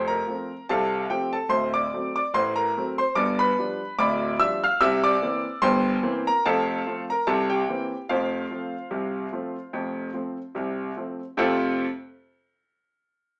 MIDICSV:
0, 0, Header, 1, 2, 480
1, 0, Start_track
1, 0, Key_signature, -1, "major"
1, 0, Tempo, 821918
1, 878, Time_signature, 2, 2, 24, 8
1, 7824, End_track
2, 0, Start_track
2, 0, Title_t, "Grand piano"
2, 0, Program_c, 0, 0
2, 0, Note_on_c, 0, 29, 89
2, 0, Note_on_c, 0, 41, 98
2, 44, Note_on_c, 0, 82, 102
2, 55, Note_on_c, 0, 70, 81
2, 115, Note_off_c, 0, 29, 0
2, 117, Note_off_c, 0, 41, 0
2, 160, Note_on_c, 0, 53, 54
2, 162, Note_on_c, 0, 57, 50
2, 166, Note_on_c, 0, 60, 51
2, 292, Note_off_c, 0, 53, 0
2, 293, Note_off_c, 0, 57, 0
2, 296, Note_off_c, 0, 60, 0
2, 379, Note_off_c, 0, 70, 0
2, 379, Note_off_c, 0, 82, 0
2, 405, Note_on_c, 0, 81, 110
2, 408, Note_on_c, 0, 48, 91
2, 410, Note_on_c, 0, 36, 92
2, 412, Note_on_c, 0, 77, 81
2, 413, Note_on_c, 0, 69, 80
2, 594, Note_off_c, 0, 81, 0
2, 608, Note_off_c, 0, 48, 0
2, 609, Note_off_c, 0, 36, 0
2, 629, Note_off_c, 0, 69, 0
2, 629, Note_off_c, 0, 77, 0
2, 641, Note_on_c, 0, 53, 52
2, 643, Note_on_c, 0, 79, 93
2, 645, Note_on_c, 0, 57, 57
2, 647, Note_on_c, 0, 60, 68
2, 649, Note_on_c, 0, 67, 72
2, 765, Note_off_c, 0, 67, 0
2, 770, Note_off_c, 0, 79, 0
2, 772, Note_off_c, 0, 53, 0
2, 775, Note_off_c, 0, 57, 0
2, 775, Note_on_c, 0, 81, 94
2, 777, Note_off_c, 0, 60, 0
2, 782, Note_on_c, 0, 69, 74
2, 870, Note_on_c, 0, 38, 95
2, 871, Note_on_c, 0, 26, 93
2, 874, Note_on_c, 0, 84, 106
2, 878, Note_off_c, 0, 69, 0
2, 878, Note_on_c, 0, 72, 90
2, 882, Note_off_c, 0, 81, 0
2, 999, Note_off_c, 0, 72, 0
2, 1006, Note_off_c, 0, 84, 0
2, 1014, Note_on_c, 0, 86, 112
2, 1021, Note_on_c, 0, 74, 81
2, 1077, Note_off_c, 0, 38, 0
2, 1078, Note_off_c, 0, 26, 0
2, 1129, Note_on_c, 0, 54, 54
2, 1134, Note_on_c, 0, 57, 56
2, 1135, Note_on_c, 0, 60, 55
2, 1238, Note_off_c, 0, 74, 0
2, 1239, Note_off_c, 0, 86, 0
2, 1258, Note_off_c, 0, 54, 0
2, 1260, Note_on_c, 0, 86, 106
2, 1261, Note_off_c, 0, 57, 0
2, 1262, Note_off_c, 0, 60, 0
2, 1268, Note_on_c, 0, 74, 75
2, 1361, Note_off_c, 0, 74, 0
2, 1364, Note_off_c, 0, 86, 0
2, 1366, Note_on_c, 0, 33, 99
2, 1369, Note_on_c, 0, 84, 113
2, 1370, Note_on_c, 0, 45, 96
2, 1374, Note_on_c, 0, 72, 81
2, 1487, Note_off_c, 0, 72, 0
2, 1493, Note_off_c, 0, 84, 0
2, 1493, Note_on_c, 0, 82, 99
2, 1500, Note_on_c, 0, 70, 80
2, 1566, Note_off_c, 0, 33, 0
2, 1568, Note_off_c, 0, 45, 0
2, 1615, Note_on_c, 0, 57, 65
2, 1618, Note_on_c, 0, 54, 59
2, 1622, Note_on_c, 0, 60, 62
2, 1682, Note_off_c, 0, 82, 0
2, 1717, Note_off_c, 0, 70, 0
2, 1741, Note_off_c, 0, 57, 0
2, 1742, Note_on_c, 0, 84, 104
2, 1744, Note_off_c, 0, 54, 0
2, 1747, Note_off_c, 0, 60, 0
2, 1748, Note_on_c, 0, 72, 89
2, 1840, Note_off_c, 0, 72, 0
2, 1842, Note_on_c, 0, 86, 124
2, 1843, Note_on_c, 0, 31, 101
2, 1844, Note_off_c, 0, 84, 0
2, 1844, Note_on_c, 0, 43, 112
2, 1851, Note_on_c, 0, 74, 97
2, 1964, Note_off_c, 0, 74, 0
2, 1969, Note_off_c, 0, 86, 0
2, 1980, Note_on_c, 0, 83, 123
2, 1987, Note_on_c, 0, 71, 91
2, 2043, Note_off_c, 0, 31, 0
2, 2044, Note_off_c, 0, 43, 0
2, 2094, Note_on_c, 0, 53, 54
2, 2095, Note_on_c, 0, 55, 58
2, 2096, Note_on_c, 0, 62, 67
2, 2220, Note_off_c, 0, 53, 0
2, 2221, Note_off_c, 0, 55, 0
2, 2222, Note_off_c, 0, 62, 0
2, 2302, Note_off_c, 0, 71, 0
2, 2304, Note_off_c, 0, 83, 0
2, 2328, Note_on_c, 0, 26, 118
2, 2328, Note_on_c, 0, 86, 127
2, 2329, Note_on_c, 0, 38, 103
2, 2335, Note_on_c, 0, 74, 96
2, 2337, Note_on_c, 0, 83, 99
2, 2525, Note_off_c, 0, 26, 0
2, 2526, Note_off_c, 0, 38, 0
2, 2548, Note_off_c, 0, 74, 0
2, 2548, Note_off_c, 0, 86, 0
2, 2549, Note_off_c, 0, 83, 0
2, 2565, Note_on_c, 0, 53, 75
2, 2567, Note_on_c, 0, 88, 127
2, 2570, Note_on_c, 0, 76, 95
2, 2572, Note_on_c, 0, 55, 64
2, 2575, Note_on_c, 0, 62, 82
2, 2683, Note_off_c, 0, 76, 0
2, 2689, Note_off_c, 0, 88, 0
2, 2693, Note_off_c, 0, 53, 0
2, 2698, Note_off_c, 0, 55, 0
2, 2700, Note_off_c, 0, 62, 0
2, 2707, Note_on_c, 0, 89, 121
2, 2711, Note_on_c, 0, 77, 95
2, 2800, Note_off_c, 0, 77, 0
2, 2805, Note_off_c, 0, 89, 0
2, 2807, Note_on_c, 0, 88, 126
2, 2810, Note_on_c, 0, 48, 126
2, 2812, Note_on_c, 0, 36, 99
2, 2814, Note_on_c, 0, 76, 111
2, 2924, Note_off_c, 0, 76, 0
2, 2929, Note_off_c, 0, 88, 0
2, 2941, Note_on_c, 0, 86, 125
2, 2945, Note_on_c, 0, 74, 107
2, 3005, Note_off_c, 0, 48, 0
2, 3007, Note_off_c, 0, 36, 0
2, 3050, Note_on_c, 0, 58, 62
2, 3051, Note_on_c, 0, 52, 63
2, 3058, Note_on_c, 0, 60, 65
2, 3177, Note_off_c, 0, 52, 0
2, 3177, Note_off_c, 0, 58, 0
2, 3182, Note_off_c, 0, 60, 0
2, 3212, Note_off_c, 0, 86, 0
2, 3258, Note_off_c, 0, 74, 0
2, 3281, Note_on_c, 0, 84, 127
2, 3282, Note_on_c, 0, 43, 118
2, 3284, Note_on_c, 0, 31, 115
2, 3288, Note_on_c, 0, 72, 97
2, 3290, Note_on_c, 0, 79, 93
2, 3480, Note_off_c, 0, 43, 0
2, 3481, Note_off_c, 0, 31, 0
2, 3521, Note_on_c, 0, 52, 80
2, 3525, Note_on_c, 0, 58, 73
2, 3526, Note_on_c, 0, 60, 81
2, 3571, Note_off_c, 0, 84, 0
2, 3624, Note_off_c, 0, 72, 0
2, 3625, Note_off_c, 0, 79, 0
2, 3649, Note_off_c, 0, 52, 0
2, 3652, Note_off_c, 0, 58, 0
2, 3653, Note_off_c, 0, 60, 0
2, 3663, Note_on_c, 0, 70, 84
2, 3663, Note_on_c, 0, 82, 124
2, 3754, Note_off_c, 0, 70, 0
2, 3761, Note_off_c, 0, 82, 0
2, 3770, Note_on_c, 0, 29, 100
2, 3770, Note_on_c, 0, 81, 118
2, 3771, Note_on_c, 0, 41, 116
2, 3773, Note_on_c, 0, 77, 94
2, 3777, Note_on_c, 0, 69, 91
2, 3965, Note_off_c, 0, 29, 0
2, 3965, Note_off_c, 0, 41, 0
2, 4010, Note_on_c, 0, 57, 72
2, 4011, Note_on_c, 0, 53, 57
2, 4013, Note_on_c, 0, 60, 58
2, 4107, Note_off_c, 0, 77, 0
2, 4109, Note_off_c, 0, 69, 0
2, 4111, Note_off_c, 0, 81, 0
2, 4136, Note_off_c, 0, 57, 0
2, 4137, Note_off_c, 0, 53, 0
2, 4139, Note_off_c, 0, 60, 0
2, 4146, Note_on_c, 0, 82, 98
2, 4156, Note_on_c, 0, 70, 80
2, 4241, Note_off_c, 0, 70, 0
2, 4242, Note_off_c, 0, 82, 0
2, 4246, Note_on_c, 0, 36, 105
2, 4246, Note_on_c, 0, 81, 108
2, 4247, Note_on_c, 0, 48, 110
2, 4254, Note_on_c, 0, 69, 80
2, 4363, Note_off_c, 0, 69, 0
2, 4367, Note_off_c, 0, 81, 0
2, 4378, Note_on_c, 0, 79, 100
2, 4382, Note_on_c, 0, 67, 74
2, 4443, Note_off_c, 0, 36, 0
2, 4444, Note_off_c, 0, 48, 0
2, 4492, Note_on_c, 0, 52, 62
2, 4492, Note_on_c, 0, 58, 58
2, 4495, Note_on_c, 0, 60, 70
2, 4618, Note_off_c, 0, 52, 0
2, 4619, Note_off_c, 0, 58, 0
2, 4621, Note_off_c, 0, 60, 0
2, 4652, Note_off_c, 0, 79, 0
2, 4699, Note_off_c, 0, 67, 0
2, 4727, Note_on_c, 0, 77, 99
2, 4728, Note_on_c, 0, 29, 86
2, 4730, Note_on_c, 0, 41, 97
2, 4734, Note_on_c, 0, 72, 73
2, 4737, Note_on_c, 0, 65, 64
2, 4926, Note_off_c, 0, 29, 0
2, 4927, Note_off_c, 0, 41, 0
2, 4968, Note_on_c, 0, 53, 46
2, 4970, Note_on_c, 0, 57, 56
2, 4973, Note_on_c, 0, 60, 50
2, 5096, Note_off_c, 0, 53, 0
2, 5098, Note_off_c, 0, 57, 0
2, 5100, Note_off_c, 0, 60, 0
2, 5202, Note_on_c, 0, 48, 82
2, 5203, Note_on_c, 0, 36, 80
2, 5403, Note_off_c, 0, 48, 0
2, 5404, Note_off_c, 0, 36, 0
2, 5446, Note_on_c, 0, 53, 52
2, 5449, Note_on_c, 0, 60, 50
2, 5450, Note_on_c, 0, 57, 57
2, 5575, Note_off_c, 0, 53, 0
2, 5577, Note_off_c, 0, 60, 0
2, 5578, Note_off_c, 0, 57, 0
2, 5684, Note_on_c, 0, 29, 78
2, 5684, Note_on_c, 0, 41, 87
2, 5877, Note_off_c, 0, 77, 0
2, 5885, Note_off_c, 0, 29, 0
2, 5885, Note_off_c, 0, 41, 0
2, 5917, Note_on_c, 0, 53, 47
2, 5926, Note_on_c, 0, 60, 53
2, 5927, Note_on_c, 0, 57, 46
2, 6049, Note_off_c, 0, 53, 0
2, 6056, Note_off_c, 0, 60, 0
2, 6057, Note_off_c, 0, 57, 0
2, 6146, Note_off_c, 0, 72, 0
2, 6147, Note_off_c, 0, 65, 0
2, 6160, Note_on_c, 0, 48, 79
2, 6166, Note_on_c, 0, 36, 82
2, 6364, Note_off_c, 0, 48, 0
2, 6367, Note_off_c, 0, 36, 0
2, 6404, Note_on_c, 0, 53, 51
2, 6407, Note_on_c, 0, 57, 48
2, 6412, Note_on_c, 0, 60, 54
2, 6535, Note_off_c, 0, 53, 0
2, 6537, Note_off_c, 0, 57, 0
2, 6540, Note_off_c, 0, 60, 0
2, 6641, Note_on_c, 0, 48, 98
2, 6642, Note_on_c, 0, 41, 110
2, 6648, Note_on_c, 0, 60, 106
2, 6649, Note_on_c, 0, 65, 105
2, 6650, Note_on_c, 0, 57, 107
2, 6652, Note_on_c, 0, 69, 104
2, 6912, Note_off_c, 0, 41, 0
2, 6912, Note_off_c, 0, 48, 0
2, 6915, Note_off_c, 0, 60, 0
2, 6916, Note_off_c, 0, 65, 0
2, 6917, Note_off_c, 0, 57, 0
2, 6918, Note_off_c, 0, 69, 0
2, 7824, End_track
0, 0, End_of_file